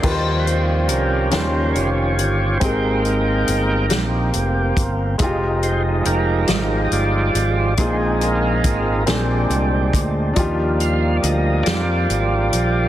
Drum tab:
CC |x-----|------|------|------|
HH |-xxxxx|xxxxxx|xxxxxx|xxxxxx|
SD |---o--|---o--|---o--|---o--|
BD |o-----|o----o|o-----|o-o--o|

CC |------|
HH |xxxxxx|
SD |---o--|
BD |o-----|